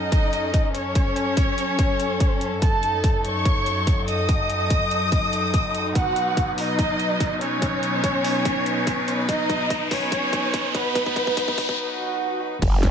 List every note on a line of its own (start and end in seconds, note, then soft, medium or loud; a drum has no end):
0.00 5.91 F#2 medium
0.00 12.58 F#3 medium
0.00 2.59 C#4 medium
0.00 0.67 D#4 medium
0.00 5.91 A4 medium
0.00 0.67 D#5 loud
0.00 riser medium
0.12 kick medium
0.12 closed hi-hat medium
0.33 closed hi-hat medium
0.54 kick medium
0.54 closed hi-hat medium
0.75 2.54 C#4 medium
0.75 2.54 C#5 loud
0.75 closed hi-hat medium
0.95 kick medium
0.95 closed hi-hat medium
1.16 closed hi-hat medium
1.37 kick medium
1.37 closed hi-hat medium
1.58 closed hi-hat soft
1.79 kick medium
1.79 closed hi-hat medium
2.00 closed hi-hat medium
2.20 kick medium
2.20 closed hi-hat medium
2.41 closed hi-hat medium
2.62 12.58 D#4 medium
2.62 3.17 A4 medium
2.62 3.17 A5 loud
2.62 kick medium
2.62 closed hi-hat medium
2.83 closed hi-hat medium
3.04 kick medium
3.04 closed hi-hat medium
3.24 4.00 C#5 medium
3.24 4.00 C#6 loud
3.24 closed hi-hat soft
3.45 kick loud
3.45 closed hi-hat medium
3.66 closed hi-hat soft
3.87 kick medium
3.87 closed hi-hat medium
4.08 5.88 D#5 medium
4.08 5.88 D#6 loud
4.08 closed hi-hat medium
4.29 kick medium
4.29 closed hi-hat medium
4.50 closed hi-hat soft
4.70 kick medium
4.70 closed hi-hat medium
4.91 closed hi-hat soft
5.12 kick loud
5.12 closed hi-hat medium
5.33 closed hi-hat soft
5.54 kick medium
5.54 closed hi-hat medium
5.75 closed hi-hat soft
5.95 12.58 B2 medium
5.95 6.50 F#4 medium
5.95 12.58 B4 medium
5.95 6.50 F#5 loud
5.95 kick medium
5.95 closed hi-hat medium
6.16 closed hi-hat soft
6.37 kick loud
6.37 closed hi-hat medium
6.58 7.33 D#4 medium
6.58 7.33 D#5 loud
6.58 open hi-hat medium
6.79 kick loud
6.79 closed hi-hat medium
7.00 closed hi-hat soft
7.20 kick loud
7.20 closed hi-hat medium
7.41 9.21 C#4 medium
7.41 9.21 C#5 loud
7.41 closed hi-hat soft
7.62 kick loud
7.62 closed hi-hat medium
7.83 closed hi-hat medium
8.04 kick loud
8.04 closed hi-hat medium
8.25 open hi-hat loud
8.45 kick loud
8.45 closed hi-hat medium
8.66 closed hi-hat medium
8.87 kick loud
8.87 closed hi-hat medium
9.08 closed hi-hat medium
9.29 9.83 D#4 medium
9.29 9.83 D#5 loud
9.29 kick loud
9.29 closed hi-hat medium
9.50 kick loud
9.50 closed hi-hat medium
9.70 kick loud
9.70 closed hi-hat medium
9.91 10.67 C#4 medium
9.91 10.67 C#5 loud
9.91 kick loud
9.91 open hi-hat medium
10.12 kick loud
10.12 closed hi-hat medium
10.33 kick loud
10.33 closed hi-hat medium
10.54 kick loud
10.54 closed hi-hat medium
10.75 11.79 B3 medium
10.75 11.79 B4 loud
10.75 kick loud
10.75 closed hi-hat medium
10.95 kick loud
10.95 closed hi-hat medium
11.06 kick medium
11.16 kick loud
11.16 closed hi-hat medium
11.27 kick medium
11.37 kick loud
11.37 closed hi-hat medium
11.48 kick medium
11.58 kick loud
11.58 open hi-hat loud
11.69 kick medium
11.79 swell medium
12.62 12.91 F#1 medium
12.62 12.91 F#3 medium
12.62 12.91 A3 medium
12.62 12.91 C#4 medium
12.62 kick loud
12.62 closed hi-hat medium
12.62 crash loud
12.62 impact medium
12.83 kick loud
12.83 snare medium
12.83 closed hi-hat medium